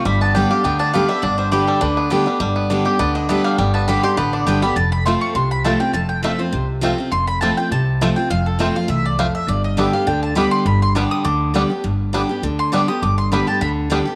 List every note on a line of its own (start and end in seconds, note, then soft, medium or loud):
0.05 0.43 G1 medium
0.05 0.61 G2 medium
0.05 1.09 G3 medium
0.05 0.21 B5 medium
0.21 0.64 B3 medium
0.21 0.34 A5 medium
0.35 0.50 D3 medium
0.35 0.50 G3 medium
0.35 0.51 B3 medium
0.35 0.79 D4 medium
0.35 0.50 G4 medium
0.35 0.50 G5 medium
0.50 0.65 B3 soft
0.50 1.52 G4 medium
0.50 0.64 G4 medium
0.50 0.64 F5 medium
0.64 1.02 D2 medium
0.64 0.92 D3 medium
0.64 0.93 B3 medium
0.64 0.79 G5 medium
0.79 1.23 D4 medium
0.79 0.93 A5 loud
0.93 1.09 D3 medium
0.93 1.09 G3 loud
0.93 1.97 B3 medium
0.93 1.09 B3 medium
0.93 1.08 G4 loud
0.93 1.08 F5 medium
1.09 1.38 G3 medium
1.09 1.23 B3 medium
1.09 1.22 G4 medium
1.09 1.22 E5 medium
1.22 1.61 G1 medium
1.22 1.79 G2 medium
1.22 1.81 D4 medium
1.22 1.37 D5 medium
1.38 1.68 G3 medium
1.38 1.51 C5 medium
1.52 1.80 D3 medium
1.52 1.80 G3 medium
1.52 1.81 B3 medium
1.52 2.85 G4 medium
1.52 1.81 G4 loud
1.52 1.67 B4 medium
1.67 2.26 G3 medium
1.67 1.81 A4 medium
1.81 2.20 D2 medium
1.81 2.09 D3 loud
1.81 2.11 D4 medium
1.81 2.37 B4 medium
1.97 2.55 B3 medium
2.10 2.26 D3 medium
2.10 2.26 G3 medium
2.10 2.27 B3 medium
2.10 2.70 D4 medium
2.10 2.25 G4 loud
2.26 2.40 G3 medium
2.26 2.41 B3 medium
2.26 2.40 G4 medium
2.40 2.78 G1 medium
2.40 2.97 G2 loud
2.40 2.83 G3 medium
2.56 2.97 B3 medium
2.70 2.85 D3 loud
2.70 2.85 G3 medium
2.70 2.85 B3 medium
2.70 3.12 D4 medium
2.70 2.84 G4 medium
2.85 3.00 B3 soft
2.85 2.99 G4 medium
2.85 3.26 G4 medium
2.99 3.38 D2 medium
2.99 3.28 D3 medium
2.99 3.28 B3 medium
2.99 3.15 D5 medium
3.15 3.56 D4 medium
3.15 3.29 D#5 loud
3.29 3.57 D3 medium
3.29 3.57 G3 medium
3.29 3.71 B3 medium
3.29 3.58 B3 loud
3.29 3.58 G4 loud
3.29 3.44 E5 medium
3.44 3.57 G3 medium
3.44 3.58 F5 loud
3.58 3.96 G1 loud
3.58 4.15 G2 loud
3.58 4.01 G3 medium
3.58 3.73 G5 medium
3.74 4.15 B3 medium
3.74 3.87 A5 medium
3.88 4.03 D3 medium
3.88 4.03 G3 medium
3.88 4.04 B3 medium
3.88 4.30 D4 medium
3.88 4.02 G4 loud
3.88 4.03 B5 loud
4.03 4.18 B3 medium
4.03 4.17 G4 medium
4.03 4.44 G4 medium
4.03 4.17 C6 loud
4.17 4.42 A1 medium
4.17 4.45 D3 loud
4.17 4.45 B3 medium
4.17 4.33 B5 medium
4.33 4.74 D4 medium
4.33 4.46 D5 medium
4.46 4.72 G1 medium
4.46 4.62 D3 loud
4.46 4.62 G3 medium
4.46 4.76 B3 medium
4.46 4.62 B3 loud
4.46 4.61 G4 loud
4.46 4.62 G5 medium
4.62 4.76 G3 medium
4.62 4.77 B3 medium
4.62 4.76 G4 medium
4.62 4.76 B5 loud
4.76 5.14 F1 medium
4.76 5.33 F2 medium
4.76 4.91 A5 medium
4.92 5.05 B5 loud
5.05 5.34 F3 medium
5.05 5.13 A3 medium
5.05 5.34 A3 medium
5.05 5.13 C4 medium
5.05 5.35 C4 medium
5.05 5.13 F4 medium
5.05 5.35 F4 loud
5.05 5.21 C6 medium
5.21 5.35 C#6 loud
5.35 5.73 C2 medium
5.35 5.91 C3 medium
5.35 5.51 C6 medium
5.51 5.64 B5 loud
5.64 5.80 F3 medium
5.64 5.80 A3 medium
5.64 5.72 A3 medium
5.64 5.80 C4 loud
5.64 5.72 C4 medium
5.64 5.72 F4 medium
5.64 5.79 F4 medium
5.64 5.80 A5 medium
5.80 5.94 C4 medium
5.80 5.93 F4 medium
5.80 5.93 G5 loud
5.93 6.32 F1 medium
5.93 6.50 F2 medium
5.93 6.09 A5 loud
6.09 6.23 G5 medium
6.23 6.38 F3 medium
6.23 6.39 A3 medium
6.23 6.31 A3 medium
6.23 6.39 C4 loud
6.23 6.31 C4 medium
6.23 6.37 F4 medium
6.23 6.31 F4 medium
6.23 6.39 E5 medium
6.39 6.53 C4 soft
6.39 6.52 F4 medium
6.39 6.67 C5 medium
6.53 6.91 C2 medium
6.53 7.09 C3 medium
6.81 6.97 F3 medium
6.81 6.97 A3 loud
6.81 6.90 A3 medium
6.81 6.98 C4 loud
6.81 6.90 C4 medium
6.81 6.97 F4 loud
6.81 6.90 F4 medium
6.98 7.12 C4 medium
6.98 7.12 F4 medium
7.12 7.50 F1 medium
7.12 7.68 F2 medium
7.12 7.27 C6 loud
7.27 7.40 B5 loud
7.41 7.57 F3 medium
7.41 7.57 A3 loud
7.41 7.49 A3 medium
7.41 7.57 C4 medium
7.41 7.49 C4 medium
7.41 7.57 F4 loud
7.41 7.49 F4 medium
7.41 7.56 A5 medium
7.57 7.72 C4 medium
7.57 7.71 F4 medium
7.57 7.71 G5 medium
7.71 8.09 C2 medium
7.71 8.28 C3 medium
7.71 8.13 A5 loud
8.01 8.16 F3 loud
8.01 8.08 A3 medium
8.01 8.16 A3 medium
8.01 8.08 C4 medium
8.01 8.17 C4 loud
8.01 8.08 F4 medium
8.01 8.16 F4 loud
8.16 8.31 C4 medium
8.16 8.30 F4 medium
8.16 8.30 G5 medium
8.30 8.68 F1 medium
8.30 8.87 F2 loud
8.30 8.45 F5 medium
8.46 8.59 A4 medium
8.59 8.74 F3 medium
8.59 8.75 A3 medium
8.59 8.67 A3 medium
8.59 8.75 C4 medium
8.59 8.67 C4 medium
8.59 8.74 F4 medium
8.59 8.67 F4 medium
8.59 8.75 C5 medium
8.75 8.89 C4 soft
8.75 8.88 F4 medium
8.75 8.89 F5 loud
8.88 9.27 C2 medium
8.88 9.17 E2 loud
8.88 9.05 E5 medium
9.06 9.19 D5 loud
9.19 9.47 F2 medium
9.19 9.26 A3 medium
9.19 9.26 C4 medium
9.19 9.26 F4 medium
9.19 9.34 F5 loud
9.35 9.48 E5 loud
9.48 9.86 G1 medium
9.48 10.04 G2 medium
9.48 9.64 D5 medium
9.64 9.77 D#5 medium
9.77 9.92 D3 medium
9.77 9.93 G3 medium
9.77 9.85 G3 medium
9.77 9.93 B3 medium
9.77 9.85 B3 medium
9.77 9.85 D4 medium
9.77 9.92 G4 loud
9.77 9.93 E5 medium
9.93 10.07 B3 soft
9.93 10.06 G4 medium
9.93 10.07 F5 medium
10.07 10.45 D2 medium
10.07 10.34 D3 medium
10.07 10.22 G5 medium
10.23 10.35 A5 medium
10.35 10.64 D3 medium
10.35 10.64 G3 medium
10.35 10.44 G3 medium
10.35 10.65 B3 medium
10.35 10.44 B3 medium
10.35 10.44 D4 medium
10.35 10.65 G4 loud
10.35 10.51 B5 loud
10.51 10.65 C6 loud
10.65 11.04 G1 medium
10.65 11.22 G2 loud
10.65 10.81 B5 medium
10.82 10.95 C6 loud
10.95 11.23 D3 medium
10.95 11.24 G3 medium
10.95 11.03 G3 medium
10.95 11.24 B3 medium
10.95 11.03 B3 medium
10.95 11.03 D4 medium
10.95 11.24 G4 loud
10.95 11.11 D6 loud
11.11 11.25 D#6 loud
11.24 11.63 D2 medium
11.24 11.52 D3 loud
11.24 11.80 D6 loud
11.54 11.69 D3 medium
11.54 11.69 G3 medium
11.54 11.62 G3 medium
11.54 11.70 B3 medium
11.54 11.62 B3 medium
11.54 11.62 D4 medium
11.54 11.69 G4 loud
11.70 11.84 B3 medium
11.70 11.83 G4 medium
11.84 12.22 G1 medium
11.84 12.40 G2 medium
12.13 12.28 D3 medium
12.13 12.21 G3 medium
12.13 12.29 G3 medium
12.13 12.21 B3 medium
12.13 12.29 B3 medium
12.13 12.21 D4 medium
12.13 12.28 G4 loud
12.29 12.43 B3 medium
12.29 12.42 G4 medium
12.43 12.81 D2 medium
12.43 12.71 D3 medium
12.59 12.72 C6 medium
12.72 12.87 D3 medium
12.72 12.88 G3 loud
12.72 12.80 G3 medium
12.72 12.88 B3 medium
12.72 12.80 B3 medium
12.72 12.80 D4 medium
12.72 12.87 G4 loud
12.72 12.88 D6 medium
12.88 13.02 B3 medium
12.88 13.02 G4 medium
12.88 13.02 D#6 loud
13.02 13.40 G1 medium
13.02 13.59 G2 loud
13.02 13.17 D6 medium
13.18 13.31 C6 loud
13.32 13.47 D3 medium
13.32 13.47 G3 medium
13.32 13.39 G3 medium
13.32 13.47 B3 medium
13.32 13.39 B3 medium
13.32 13.39 D4 medium
13.32 13.46 G4 loud
13.32 13.47 B5 medium
13.47 13.61 B3 soft
13.47 13.60 G4 medium
13.47 13.61 A5 medium
13.61 13.99 D2 medium
13.61 13.89 D3 medium
13.61 13.71 B5 medium
13.90 14.05 D3 medium
13.90 14.05 G3 medium
13.90 13.98 G3 medium
13.90 14.06 B3 loud
13.90 13.98 B3 medium
13.90 13.98 D4 medium
13.90 14.04 G4 loud
14.05 14.15 B3 medium
14.05 14.15 G4 medium